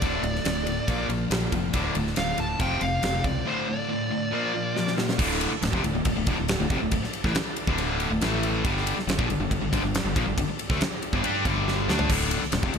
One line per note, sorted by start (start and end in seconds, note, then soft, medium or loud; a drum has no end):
0.00 0.19 D1 medium
0.00 0.23 D2 medium
0.00 0.23 A2 loud
0.00 0.23 D3 loud
0.00 0.87 D4 medium
0.00 0.88 A4 medium
0.00 1.06 D5 medium
0.00 0.87 D5 medium
0.00 kick loud
0.00 ride loud
0.23 0.40 D1 loud
0.23 0.44 D2 medium
0.23 0.44 A2 medium
0.23 ride medium
0.35 snare soft
0.45 0.79 D1 medium
0.45 0.65 D2 medium
0.45 0.65 A2 medium
0.45 snare loud
0.45 ride medium
0.67 0.86 D2 medium
0.67 0.86 A2 medium
0.67 ride medium
0.87 1.05 A#1 medium
0.87 1.09 A#2 medium
0.87 1.09 F3 medium
0.87 1.73 A#3 medium
0.87 1.09 A#3 loud
0.87 1.73 F4 medium
0.87 1.73 C5 medium
0.87 kick loud
0.87 ride loud
1.09 1.26 A#1 loud
1.09 1.29 A#2 medium
1.09 1.29 F3 medium
1.09 ride medium
1.30 1.48 A#1 medium
1.30 1.51 A#2 medium
1.30 1.51 F3 medium
1.30 snare loud
1.30 ride medium
1.52 1.69 F1 loud
1.52 1.72 A#2 medium
1.52 1.73 F3 medium
1.52 kick medium
1.52 ride medium
1.73 1.91 D1 medium
1.73 1.95 D2 medium
1.73 1.95 A2 medium
1.73 1.95 D3 loud
1.73 2.60 D4 medium
1.73 2.59 A4 medium
1.73 2.60 D5 medium
1.73 kick loud
1.73 ride loud
1.95 2.13 D1 loud
1.95 2.16 D2 medium
1.95 2.16 A2 medium
1.95 ride medium
2.07 snare soft
2.16 2.34 D1 loud
2.16 2.37 D2 medium
2.16 2.37 A2 medium
2.16 2.38 F5 loud
2.16 snare loud
2.16 ride loud
2.38 2.55 D1 medium
2.38 2.58 D2 medium
2.38 2.58 A2 medium
2.38 2.60 A5 loud
2.38 ride medium
2.59 2.77 F1 loud
2.59 2.80 F2 loud
2.59 2.80 C3 loud
2.59 3.45 F3 medium
2.59 2.81 F3 loud
2.59 3.45 C4 medium
2.59 3.46 G4 medium
2.59 2.83 G5 loud
2.59 kick loud
2.59 ride loud
2.81 2.98 F1 medium
2.81 3.01 F2 medium
2.81 3.01 C3 medium
2.81 3.22 F5 loud
2.81 ride medium
3.03 3.20 F1 medium
3.03 3.23 F2 medium
3.03 3.23 C3 medium
3.03 snare loud
3.03 ride loud
3.24 3.41 C#2 medium
3.24 3.44 F2 medium
3.24 3.45 C3 medium
3.24 3.45 D5 medium
3.24 kick medium
3.24 ride medium
3.46 3.67 D2 loud
3.46 3.67 A2 loud
3.46 3.67 D3 loud
3.46 4.33 D4 medium
3.46 4.32 A4 medium
3.46 3.69 C5 medium
3.46 4.32 D5 medium
3.68 3.88 D2 medium
3.68 3.88 A2 medium
3.68 4.94 D5 medium
3.89 4.09 D2 medium
3.89 4.09 A2 medium
4.11 4.31 D2 medium
4.11 4.31 A2 medium
4.32 4.53 A#2 loud
4.32 4.53 F3 medium
4.32 4.53 A#3 loud
4.32 5.19 A#3 medium
4.32 5.18 F4 medium
4.32 5.18 C5 medium
4.55 4.74 A#2 medium
4.55 4.74 F3 medium
4.76 4.95 A#2 medium
4.76 4.96 F3 medium
4.76 snare medium
4.87 snare medium
4.97 5.17 A#2 medium
4.97 5.17 F3 medium
4.97 snare medium
5.09 snare medium
5.18 5.49 D1 medium
5.18 5.50 D2 medium
5.18 5.51 A2 loud
5.18 5.51 D3 loud
5.18 8.18 D4 medium
5.18 12.05 A4 medium
5.18 8.19 D5 medium
5.18 kick loud
5.18 crash loud
5.32 snare soft
5.41 ride medium
5.51 muted fingered electric bass stroke soft
5.51 muted overdriven electric guitar stroke medium
5.51 muted distorted electric guitar stroke medium
5.62 5.73 D1 medium
5.62 5.73 D2 medium
5.62 5.73 A2 medium
5.62 snare loud
5.62 ride loud
5.73 5.83 F1 loud
5.73 5.83 F2 medium
5.73 5.84 C3 loud
5.73 kick loud
5.84 5.94 D1 medium
5.84 5.94 D2 medium
5.84 5.94 A2 medium
5.84 ride medium
5.95 6.05 D1 loud
5.95 6.04 D2 medium
5.95 6.05 A2 medium
6.05 6.16 D1 medium
6.05 6.15 D2 medium
6.05 6.16 A2 medium
6.05 kick loud
6.05 ride loud
6.17 6.26 D1 medium
6.17 6.26 D2 medium
6.17 6.27 A2 medium
6.27 6.37 D1 medium
6.27 6.37 D2 medium
6.27 6.37 A2 loud
6.27 kick loud
6.27 ride medium
6.38 6.59 D1 medium
6.38 6.55 D2 medium
6.38 6.56 A2 medium
6.48 snare loud
6.48 ride loud
6.60 6.69 D1 medium
6.60 6.71 D2 medium
6.60 6.71 A2 medium
6.70 6.80 F1 loud
6.70 6.81 F2 loud
6.70 6.81 C3 loud
6.70 kick loud
6.70 ride medium
6.82 6.91 D1 medium
6.82 6.92 D2 medium
6.82 6.92 A2 medium
6.91 7.02 D1 medium
6.91 7.03 D2 medium
6.91 7.03 A2 medium
6.91 kick loud
6.91 ride loud
7.04 muted distorted electric guitar stroke medium
7.04 muted overdriven electric guitar stroke medium
7.04 snare soft
7.13 ride medium
7.24 7.34 A1 loud
7.24 7.35 A2 medium
7.24 7.35 E3 loud
7.24 kick loud
7.24 snare soft
7.35 muted fingered electric bass stroke soft
7.35 muted overdriven electric guitar stroke medium
7.35 muted distorted electric guitar stroke medium
7.35 snare loud
7.35 ride medium
7.56 ride medium
7.67 8.08 D1 loud
7.67 8.10 D2 loud
7.67 8.10 A2 loud
7.67 8.11 D3 loud
7.67 kick loud
7.78 ride loud
8.00 ride medium
8.10 8.21 D1 medium
8.10 8.21 D2 medium
8.10 8.21 A2 medium
8.20 8.61 A1 loud
8.20 8.64 A2 medium
8.20 8.64 E3 medium
8.20 8.63 A3 medium
8.20 8.65 A3 medium
8.20 8.64 E4 medium
8.20 snare loud
8.20 ride loud
8.43 ride medium
8.64 8.95 G1 loud
8.64 8.96 G2 medium
8.64 8.96 D3 loud
8.64 12.06 G3 medium
8.64 8.97 G3 loud
8.64 12.06 D4 medium
8.64 kick loud
8.64 ride loud
8.77 snare soft
8.87 ride loud
8.97 muted fingered electric bass stroke soft
8.97 muted overdriven electric guitar stroke medium
8.97 muted distorted electric guitar stroke medium
8.97 snare soft
9.07 9.17 G1 medium
9.07 9.18 G2 medium
9.07 9.18 D3 medium
9.07 snare loud
9.07 ride loud
9.18 9.28 A#1 medium
9.18 9.29 A#2 loud
9.18 9.29 F3 loud
9.18 kick loud
9.28 9.39 G1 medium
9.28 9.39 G2 medium
9.28 9.39 D3 medium
9.28 ride medium
9.40 9.50 G1 medium
9.40 9.49 G2 medium
9.40 9.50 D3 medium
9.50 9.60 G1 medium
9.50 9.60 G2 medium
9.50 9.60 D3 medium
9.50 kick loud
9.50 ride loud
9.61 9.71 G1 medium
9.61 9.71 G2 medium
9.61 9.72 D3 medium
9.73 9.82 G1 loud
9.73 9.82 G2 loud
9.73 9.83 D3 loud
9.73 kick loud
9.73 ride medium
9.83 10.03 G1 medium
9.83 10.00 G2 medium
9.83 10.01 D3 medium
9.95 snare loud
9.95 ride loud
10.04 10.14 G1 medium
10.04 10.16 G2 medium
10.04 10.16 D3 medium
10.16 10.25 A#1 loud
10.16 10.26 A#2 medium
10.16 10.26 F3 loud
10.16 kick loud
10.16 ride medium
10.26 10.36 G1 medium
10.26 10.36 G2 medium
10.26 10.37 D3 medium
10.38 10.47 G1 medium
10.38 10.48 G2 medium
10.38 10.48 D3 medium
10.38 kick loud
10.38 ride loud
10.48 muted fingered electric bass stroke soft
10.48 muted distorted electric guitar stroke medium
10.48 muted overdriven electric guitar stroke medium
10.59 ride medium
10.70 10.80 D2 loud
10.70 10.80 D3 loud
10.70 10.80 A3 loud
10.70 kick loud
10.70 snare soft
10.80 muted fingered electric bass stroke soft
10.80 muted distorted electric guitar stroke medium
10.80 muted overdriven electric guitar stroke medium
10.80 snare loud
10.80 ride loud
11.02 ride medium
11.13 11.22 G1 loud
11.13 11.23 G2 loud
11.13 11.24 D3 loud
11.13 kick loud
11.23 11.43 G2 loud
11.23 11.44 G3 loud
11.23 11.45 D4 loud
11.23 11.45 G4 loud
11.23 ride loud
11.45 11.85 G1 loud
11.45 11.88 G2 loud
11.45 11.87 D3 loud
11.45 11.88 G3 loud
11.45 kick loud
11.45 ride medium
11.68 snare medium
11.88 12.08 D2 loud
11.88 12.09 D3 medium
11.88 12.09 A3 loud
11.88 12.09 D4 loud
11.88 snare loud
11.99 floor tom loud
12.09 12.40 D1 medium
12.09 12.41 D2 loud
12.09 12.42 A2 loud
12.09 12.42 D3 loud
12.09 12.78 D4 medium
12.09 12.78 A4 medium
12.09 12.78 D5 medium
12.09 kick loud
12.09 crash loud
12.31 ride loud
12.42 muted fingered electric bass stroke soft
12.42 muted overdriven electric guitar stroke medium
12.42 muted distorted electric guitar stroke medium
12.42 snare soft
12.52 12.62 D1 medium
12.52 12.62 D2 medium
12.52 12.63 A2 medium
12.52 snare loud
12.52 ride loud
12.63 12.73 F1 loud
12.63 12.73 F2 medium
12.63 12.74 C3 loud
12.63 kick loud
12.73 12.78 D1 medium
12.73 12.78 D2 medium
12.73 12.78 A2 medium
12.73 ride medium